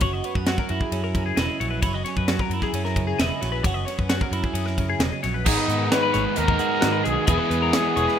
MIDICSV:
0, 0, Header, 1, 7, 480
1, 0, Start_track
1, 0, Tempo, 454545
1, 16, Time_signature, 4, 2, 24, 8
1, 8650, End_track
2, 0, Start_track
2, 0, Title_t, "Clean electric guitar"
2, 0, Program_c, 0, 27
2, 20, Note_on_c, 0, 73, 91
2, 138, Note_off_c, 0, 73, 0
2, 138, Note_on_c, 0, 75, 67
2, 263, Note_off_c, 0, 75, 0
2, 263, Note_on_c, 0, 73, 78
2, 374, Note_off_c, 0, 73, 0
2, 374, Note_on_c, 0, 71, 64
2, 494, Note_off_c, 0, 71, 0
2, 501, Note_on_c, 0, 66, 69
2, 617, Note_off_c, 0, 66, 0
2, 625, Note_on_c, 0, 70, 70
2, 859, Note_off_c, 0, 70, 0
2, 859, Note_on_c, 0, 68, 69
2, 1090, Note_off_c, 0, 68, 0
2, 1095, Note_on_c, 0, 70, 66
2, 1325, Note_off_c, 0, 70, 0
2, 1329, Note_on_c, 0, 68, 75
2, 1441, Note_on_c, 0, 75, 78
2, 1450, Note_off_c, 0, 68, 0
2, 1686, Note_off_c, 0, 75, 0
2, 1692, Note_on_c, 0, 73, 74
2, 1796, Note_off_c, 0, 73, 0
2, 1800, Note_on_c, 0, 71, 72
2, 1918, Note_off_c, 0, 71, 0
2, 1922, Note_on_c, 0, 73, 87
2, 2046, Note_off_c, 0, 73, 0
2, 2051, Note_on_c, 0, 75, 66
2, 2157, Note_off_c, 0, 75, 0
2, 2161, Note_on_c, 0, 73, 73
2, 2286, Note_off_c, 0, 73, 0
2, 2298, Note_on_c, 0, 71, 59
2, 2410, Note_on_c, 0, 66, 77
2, 2414, Note_off_c, 0, 71, 0
2, 2532, Note_off_c, 0, 66, 0
2, 2532, Note_on_c, 0, 70, 70
2, 2771, Note_off_c, 0, 70, 0
2, 2776, Note_on_c, 0, 68, 75
2, 3003, Note_off_c, 0, 68, 0
2, 3007, Note_on_c, 0, 70, 69
2, 3239, Note_off_c, 0, 70, 0
2, 3243, Note_on_c, 0, 68, 71
2, 3364, Note_on_c, 0, 75, 81
2, 3366, Note_off_c, 0, 68, 0
2, 3599, Note_off_c, 0, 75, 0
2, 3599, Note_on_c, 0, 73, 73
2, 3713, Note_off_c, 0, 73, 0
2, 3717, Note_on_c, 0, 71, 71
2, 3838, Note_off_c, 0, 71, 0
2, 3838, Note_on_c, 0, 73, 90
2, 3951, Note_off_c, 0, 73, 0
2, 3951, Note_on_c, 0, 75, 66
2, 4067, Note_off_c, 0, 75, 0
2, 4067, Note_on_c, 0, 73, 75
2, 4201, Note_off_c, 0, 73, 0
2, 4201, Note_on_c, 0, 71, 65
2, 4323, Note_on_c, 0, 66, 79
2, 4325, Note_off_c, 0, 71, 0
2, 4445, Note_off_c, 0, 66, 0
2, 4445, Note_on_c, 0, 70, 69
2, 4686, Note_off_c, 0, 70, 0
2, 4686, Note_on_c, 0, 68, 74
2, 4917, Note_off_c, 0, 68, 0
2, 4917, Note_on_c, 0, 70, 69
2, 5164, Note_off_c, 0, 70, 0
2, 5169, Note_on_c, 0, 68, 73
2, 5283, Note_on_c, 0, 75, 84
2, 5290, Note_off_c, 0, 68, 0
2, 5518, Note_off_c, 0, 75, 0
2, 5523, Note_on_c, 0, 73, 77
2, 5641, Note_on_c, 0, 71, 74
2, 5646, Note_off_c, 0, 73, 0
2, 5771, Note_off_c, 0, 71, 0
2, 5771, Note_on_c, 0, 68, 95
2, 5882, Note_on_c, 0, 71, 69
2, 5891, Note_off_c, 0, 68, 0
2, 6132, Note_off_c, 0, 71, 0
2, 6132, Note_on_c, 0, 70, 66
2, 6254, Note_off_c, 0, 70, 0
2, 6254, Note_on_c, 0, 73, 81
2, 6363, Note_off_c, 0, 73, 0
2, 6367, Note_on_c, 0, 71, 71
2, 6473, Note_off_c, 0, 71, 0
2, 6477, Note_on_c, 0, 73, 82
2, 6594, Note_off_c, 0, 73, 0
2, 6594, Note_on_c, 0, 71, 71
2, 6836, Note_off_c, 0, 71, 0
2, 6840, Note_on_c, 0, 70, 72
2, 6961, Note_off_c, 0, 70, 0
2, 6961, Note_on_c, 0, 68, 77
2, 7189, Note_on_c, 0, 66, 80
2, 7207, Note_off_c, 0, 68, 0
2, 7311, Note_on_c, 0, 71, 73
2, 7321, Note_off_c, 0, 66, 0
2, 7425, Note_off_c, 0, 71, 0
2, 7429, Note_on_c, 0, 68, 82
2, 7662, Note_off_c, 0, 68, 0
2, 7675, Note_on_c, 0, 68, 96
2, 7793, Note_off_c, 0, 68, 0
2, 7793, Note_on_c, 0, 71, 71
2, 8044, Note_off_c, 0, 71, 0
2, 8051, Note_on_c, 0, 70, 68
2, 8172, Note_off_c, 0, 70, 0
2, 8172, Note_on_c, 0, 73, 78
2, 8286, Note_off_c, 0, 73, 0
2, 8286, Note_on_c, 0, 71, 76
2, 8405, Note_off_c, 0, 71, 0
2, 8409, Note_on_c, 0, 73, 81
2, 8530, Note_off_c, 0, 73, 0
2, 8534, Note_on_c, 0, 71, 77
2, 8650, Note_off_c, 0, 71, 0
2, 8650, End_track
3, 0, Start_track
3, 0, Title_t, "Trumpet"
3, 0, Program_c, 1, 56
3, 5757, Note_on_c, 1, 63, 87
3, 6210, Note_off_c, 1, 63, 0
3, 6241, Note_on_c, 1, 71, 100
3, 6733, Note_on_c, 1, 70, 99
3, 6748, Note_off_c, 1, 71, 0
3, 7447, Note_off_c, 1, 70, 0
3, 7454, Note_on_c, 1, 68, 87
3, 7677, Note_off_c, 1, 68, 0
3, 7687, Note_on_c, 1, 68, 109
3, 8650, Note_off_c, 1, 68, 0
3, 8650, End_track
4, 0, Start_track
4, 0, Title_t, "Clean electric guitar"
4, 0, Program_c, 2, 27
4, 0, Note_on_c, 2, 42, 69
4, 0, Note_on_c, 2, 54, 58
4, 0, Note_on_c, 2, 58, 55
4, 0, Note_on_c, 2, 61, 60
4, 29, Note_on_c, 2, 66, 59
4, 265, Note_off_c, 2, 61, 0
4, 269, Note_on_c, 2, 59, 52
4, 301, Note_off_c, 2, 58, 0
4, 386, Note_off_c, 2, 59, 0
4, 386, Note_on_c, 2, 61, 48
4, 504, Note_off_c, 2, 54, 0
4, 508, Note_on_c, 2, 54, 62
4, 739, Note_off_c, 2, 66, 0
4, 743, Note_on_c, 2, 64, 57
4, 963, Note_off_c, 2, 61, 0
4, 976, Note_on_c, 2, 61, 57
4, 1233, Note_on_c, 2, 49, 56
4, 1465, Note_off_c, 2, 64, 0
4, 1469, Note_on_c, 2, 64, 61
4, 1673, Note_off_c, 2, 49, 0
4, 1689, Note_off_c, 2, 42, 0
4, 1693, Note_on_c, 2, 42, 71
4, 1926, Note_off_c, 2, 64, 0
4, 1930, Note_on_c, 2, 64, 60
4, 1962, Note_off_c, 2, 54, 0
4, 2062, Note_off_c, 2, 64, 0
4, 2062, Note_on_c, 2, 66, 55
4, 2194, Note_off_c, 2, 61, 0
4, 2198, Note_on_c, 2, 61, 57
4, 2421, Note_on_c, 2, 54, 58
4, 2655, Note_off_c, 2, 66, 0
4, 2678, Note_on_c, 2, 64, 57
4, 2899, Note_off_c, 2, 61, 0
4, 2903, Note_on_c, 2, 61, 60
4, 3131, Note_on_c, 2, 49, 61
4, 3364, Note_off_c, 2, 64, 0
4, 3376, Note_on_c, 2, 64, 59
4, 3581, Note_off_c, 2, 42, 0
4, 3581, Note_off_c, 2, 49, 0
4, 3587, Note_off_c, 2, 61, 0
4, 3602, Note_on_c, 2, 42, 75
4, 3853, Note_off_c, 2, 64, 0
4, 3865, Note_on_c, 2, 66, 61
4, 4083, Note_on_c, 2, 61, 59
4, 4325, Note_off_c, 2, 54, 0
4, 4330, Note_on_c, 2, 54, 62
4, 4566, Note_off_c, 2, 66, 0
4, 4571, Note_on_c, 2, 64, 62
4, 4775, Note_off_c, 2, 61, 0
4, 4788, Note_on_c, 2, 61, 60
4, 5043, Note_on_c, 2, 49, 62
4, 5290, Note_off_c, 2, 64, 0
4, 5490, Note_off_c, 2, 61, 0
4, 5498, Note_off_c, 2, 42, 0
4, 5498, Note_off_c, 2, 49, 0
4, 5501, Note_off_c, 2, 54, 0
4, 5524, Note_on_c, 2, 42, 77
4, 5738, Note_off_c, 2, 42, 0
4, 5753, Note_on_c, 2, 44, 76
4, 5762, Note_on_c, 2, 63, 67
4, 6022, Note_on_c, 2, 59, 58
4, 6482, Note_on_c, 2, 56, 65
4, 6719, Note_off_c, 2, 63, 0
4, 6723, Note_on_c, 2, 63, 64
4, 6963, Note_on_c, 2, 66, 66
4, 7202, Note_on_c, 2, 51, 66
4, 7657, Note_off_c, 2, 44, 0
4, 7660, Note_off_c, 2, 51, 0
4, 7660, Note_off_c, 2, 66, 0
4, 7661, Note_off_c, 2, 63, 0
4, 7681, Note_on_c, 2, 40, 79
4, 7682, Note_off_c, 2, 56, 0
4, 7686, Note_on_c, 2, 52, 65
4, 7687, Note_off_c, 2, 59, 0
4, 7691, Note_on_c, 2, 59, 64
4, 7920, Note_off_c, 2, 59, 0
4, 7924, Note_on_c, 2, 59, 61
4, 8396, Note_off_c, 2, 52, 0
4, 8409, Note_on_c, 2, 52, 69
4, 8650, Note_off_c, 2, 40, 0
4, 8650, Note_off_c, 2, 52, 0
4, 8650, Note_off_c, 2, 59, 0
4, 8650, End_track
5, 0, Start_track
5, 0, Title_t, "Overdriven electric guitar"
5, 0, Program_c, 3, 29
5, 5768, Note_on_c, 3, 44, 93
5, 5773, Note_on_c, 3, 51, 102
5, 5783, Note_on_c, 3, 59, 91
5, 5784, Note_on_c, 3, 56, 99
5, 5792, Note_on_c, 3, 63, 94
5, 6710, Note_off_c, 3, 44, 0
5, 6713, Note_off_c, 3, 51, 0
5, 6723, Note_on_c, 3, 44, 76
5, 6725, Note_on_c, 3, 51, 80
5, 6729, Note_off_c, 3, 56, 0
5, 6733, Note_on_c, 3, 56, 74
5, 6737, Note_off_c, 3, 59, 0
5, 6741, Note_on_c, 3, 59, 78
5, 6745, Note_off_c, 3, 63, 0
5, 6749, Note_on_c, 3, 63, 85
5, 7675, Note_off_c, 3, 44, 0
5, 7676, Note_off_c, 3, 51, 0
5, 7688, Note_off_c, 3, 63, 0
5, 7691, Note_on_c, 3, 52, 88
5, 7700, Note_off_c, 3, 56, 0
5, 7702, Note_off_c, 3, 59, 0
5, 7704, Note_on_c, 3, 56, 103
5, 7706, Note_on_c, 3, 59, 108
5, 7712, Note_on_c, 3, 64, 98
5, 8636, Note_off_c, 3, 52, 0
5, 8650, Note_off_c, 3, 56, 0
5, 8650, Note_off_c, 3, 59, 0
5, 8650, Note_off_c, 3, 64, 0
5, 8650, End_track
6, 0, Start_track
6, 0, Title_t, "Picked electric bass"
6, 0, Program_c, 4, 34
6, 9, Note_on_c, 4, 30, 87
6, 217, Note_off_c, 4, 30, 0
6, 373, Note_on_c, 4, 42, 78
6, 578, Note_off_c, 4, 42, 0
6, 740, Note_on_c, 4, 42, 93
6, 840, Note_off_c, 4, 42, 0
6, 968, Note_on_c, 4, 42, 92
6, 1380, Note_off_c, 4, 42, 0
6, 1446, Note_on_c, 4, 28, 101
6, 1551, Note_off_c, 4, 28, 0
6, 1697, Note_on_c, 4, 34, 88
6, 1900, Note_off_c, 4, 34, 0
6, 1929, Note_on_c, 4, 30, 90
6, 2135, Note_off_c, 4, 30, 0
6, 2285, Note_on_c, 4, 42, 77
6, 2492, Note_off_c, 4, 42, 0
6, 2637, Note_on_c, 4, 42, 99
6, 2745, Note_off_c, 4, 42, 0
6, 2887, Note_on_c, 4, 42, 94
6, 3299, Note_off_c, 4, 42, 0
6, 3373, Note_on_c, 4, 28, 97
6, 3474, Note_off_c, 4, 28, 0
6, 3618, Note_on_c, 4, 34, 84
6, 3820, Note_off_c, 4, 34, 0
6, 3841, Note_on_c, 4, 30, 86
6, 4050, Note_off_c, 4, 30, 0
6, 4206, Note_on_c, 4, 42, 77
6, 4413, Note_off_c, 4, 42, 0
6, 4557, Note_on_c, 4, 42, 97
6, 4665, Note_off_c, 4, 42, 0
6, 4794, Note_on_c, 4, 42, 94
6, 5212, Note_off_c, 4, 42, 0
6, 5274, Note_on_c, 4, 28, 98
6, 5384, Note_off_c, 4, 28, 0
6, 5535, Note_on_c, 4, 34, 86
6, 5739, Note_off_c, 4, 34, 0
6, 5767, Note_on_c, 4, 32, 93
6, 5871, Note_off_c, 4, 32, 0
6, 6000, Note_on_c, 4, 44, 97
6, 6210, Note_off_c, 4, 44, 0
6, 6497, Note_on_c, 4, 32, 95
6, 6597, Note_off_c, 4, 32, 0
6, 6737, Note_on_c, 4, 39, 97
6, 6941, Note_off_c, 4, 39, 0
6, 7214, Note_on_c, 4, 44, 93
6, 7419, Note_off_c, 4, 44, 0
6, 7459, Note_on_c, 4, 35, 84
6, 7560, Note_off_c, 4, 35, 0
6, 7688, Note_on_c, 4, 28, 95
6, 7794, Note_off_c, 4, 28, 0
6, 7928, Note_on_c, 4, 40, 97
6, 8137, Note_off_c, 4, 40, 0
6, 8415, Note_on_c, 4, 28, 92
6, 8519, Note_off_c, 4, 28, 0
6, 8650, End_track
7, 0, Start_track
7, 0, Title_t, "Drums"
7, 5, Note_on_c, 9, 51, 83
7, 14, Note_on_c, 9, 36, 102
7, 111, Note_off_c, 9, 51, 0
7, 119, Note_off_c, 9, 36, 0
7, 252, Note_on_c, 9, 51, 55
7, 358, Note_off_c, 9, 51, 0
7, 373, Note_on_c, 9, 36, 82
7, 479, Note_off_c, 9, 36, 0
7, 491, Note_on_c, 9, 38, 103
7, 491, Note_on_c, 9, 51, 77
7, 597, Note_off_c, 9, 38, 0
7, 597, Note_off_c, 9, 51, 0
7, 612, Note_on_c, 9, 36, 81
7, 718, Note_off_c, 9, 36, 0
7, 727, Note_on_c, 9, 51, 59
7, 833, Note_off_c, 9, 51, 0
7, 851, Note_on_c, 9, 36, 73
7, 957, Note_off_c, 9, 36, 0
7, 972, Note_on_c, 9, 51, 74
7, 1078, Note_off_c, 9, 51, 0
7, 1212, Note_on_c, 9, 36, 86
7, 1216, Note_on_c, 9, 51, 54
7, 1317, Note_off_c, 9, 36, 0
7, 1322, Note_off_c, 9, 51, 0
7, 1449, Note_on_c, 9, 38, 101
7, 1449, Note_on_c, 9, 51, 78
7, 1555, Note_off_c, 9, 38, 0
7, 1555, Note_off_c, 9, 51, 0
7, 1699, Note_on_c, 9, 51, 57
7, 1805, Note_off_c, 9, 51, 0
7, 1926, Note_on_c, 9, 51, 77
7, 1928, Note_on_c, 9, 36, 101
7, 2032, Note_off_c, 9, 51, 0
7, 2033, Note_off_c, 9, 36, 0
7, 2171, Note_on_c, 9, 38, 32
7, 2171, Note_on_c, 9, 51, 58
7, 2276, Note_off_c, 9, 38, 0
7, 2276, Note_off_c, 9, 51, 0
7, 2288, Note_on_c, 9, 36, 77
7, 2393, Note_off_c, 9, 36, 0
7, 2407, Note_on_c, 9, 38, 105
7, 2407, Note_on_c, 9, 51, 78
7, 2513, Note_off_c, 9, 38, 0
7, 2513, Note_off_c, 9, 51, 0
7, 2527, Note_on_c, 9, 36, 78
7, 2633, Note_off_c, 9, 36, 0
7, 2649, Note_on_c, 9, 51, 61
7, 2755, Note_off_c, 9, 51, 0
7, 2765, Note_on_c, 9, 38, 34
7, 2766, Note_on_c, 9, 36, 73
7, 2871, Note_off_c, 9, 38, 0
7, 2872, Note_off_c, 9, 36, 0
7, 2889, Note_on_c, 9, 51, 83
7, 2995, Note_off_c, 9, 51, 0
7, 3013, Note_on_c, 9, 38, 34
7, 3119, Note_off_c, 9, 38, 0
7, 3128, Note_on_c, 9, 36, 80
7, 3133, Note_on_c, 9, 51, 62
7, 3233, Note_off_c, 9, 36, 0
7, 3239, Note_off_c, 9, 51, 0
7, 3374, Note_on_c, 9, 38, 113
7, 3374, Note_on_c, 9, 51, 84
7, 3479, Note_off_c, 9, 38, 0
7, 3479, Note_off_c, 9, 51, 0
7, 3616, Note_on_c, 9, 38, 34
7, 3616, Note_on_c, 9, 51, 66
7, 3722, Note_off_c, 9, 38, 0
7, 3722, Note_off_c, 9, 51, 0
7, 3847, Note_on_c, 9, 36, 105
7, 3850, Note_on_c, 9, 51, 79
7, 3953, Note_off_c, 9, 36, 0
7, 3956, Note_off_c, 9, 51, 0
7, 4095, Note_on_c, 9, 38, 34
7, 4095, Note_on_c, 9, 51, 59
7, 4201, Note_off_c, 9, 38, 0
7, 4201, Note_off_c, 9, 51, 0
7, 4210, Note_on_c, 9, 36, 78
7, 4316, Note_off_c, 9, 36, 0
7, 4325, Note_on_c, 9, 38, 105
7, 4325, Note_on_c, 9, 51, 86
7, 4430, Note_off_c, 9, 38, 0
7, 4430, Note_off_c, 9, 51, 0
7, 4447, Note_on_c, 9, 36, 82
7, 4552, Note_off_c, 9, 36, 0
7, 4569, Note_on_c, 9, 51, 60
7, 4674, Note_off_c, 9, 51, 0
7, 4686, Note_on_c, 9, 36, 74
7, 4791, Note_off_c, 9, 36, 0
7, 4806, Note_on_c, 9, 51, 84
7, 4911, Note_off_c, 9, 51, 0
7, 4932, Note_on_c, 9, 38, 35
7, 5038, Note_off_c, 9, 38, 0
7, 5046, Note_on_c, 9, 36, 78
7, 5048, Note_on_c, 9, 51, 61
7, 5152, Note_off_c, 9, 36, 0
7, 5153, Note_off_c, 9, 51, 0
7, 5281, Note_on_c, 9, 38, 110
7, 5281, Note_on_c, 9, 51, 82
7, 5386, Note_off_c, 9, 38, 0
7, 5386, Note_off_c, 9, 51, 0
7, 5528, Note_on_c, 9, 38, 34
7, 5528, Note_on_c, 9, 51, 60
7, 5634, Note_off_c, 9, 38, 0
7, 5634, Note_off_c, 9, 51, 0
7, 5765, Note_on_c, 9, 49, 123
7, 5769, Note_on_c, 9, 36, 108
7, 5870, Note_off_c, 9, 49, 0
7, 5875, Note_off_c, 9, 36, 0
7, 6014, Note_on_c, 9, 42, 74
7, 6120, Note_off_c, 9, 42, 0
7, 6250, Note_on_c, 9, 38, 113
7, 6250, Note_on_c, 9, 42, 105
7, 6355, Note_off_c, 9, 38, 0
7, 6355, Note_off_c, 9, 42, 0
7, 6482, Note_on_c, 9, 38, 35
7, 6482, Note_on_c, 9, 42, 78
7, 6588, Note_off_c, 9, 38, 0
7, 6588, Note_off_c, 9, 42, 0
7, 6716, Note_on_c, 9, 42, 100
7, 6822, Note_off_c, 9, 42, 0
7, 6846, Note_on_c, 9, 36, 90
7, 6952, Note_off_c, 9, 36, 0
7, 6960, Note_on_c, 9, 42, 80
7, 7065, Note_off_c, 9, 42, 0
7, 7204, Note_on_c, 9, 38, 115
7, 7204, Note_on_c, 9, 42, 107
7, 7309, Note_off_c, 9, 38, 0
7, 7309, Note_off_c, 9, 42, 0
7, 7449, Note_on_c, 9, 42, 79
7, 7555, Note_off_c, 9, 42, 0
7, 7681, Note_on_c, 9, 42, 105
7, 7687, Note_on_c, 9, 36, 114
7, 7786, Note_off_c, 9, 42, 0
7, 7792, Note_off_c, 9, 36, 0
7, 7932, Note_on_c, 9, 42, 74
7, 8038, Note_off_c, 9, 42, 0
7, 8167, Note_on_c, 9, 38, 113
7, 8167, Note_on_c, 9, 42, 100
7, 8272, Note_off_c, 9, 38, 0
7, 8272, Note_off_c, 9, 42, 0
7, 8415, Note_on_c, 9, 42, 74
7, 8520, Note_off_c, 9, 42, 0
7, 8538, Note_on_c, 9, 38, 35
7, 8644, Note_off_c, 9, 38, 0
7, 8650, End_track
0, 0, End_of_file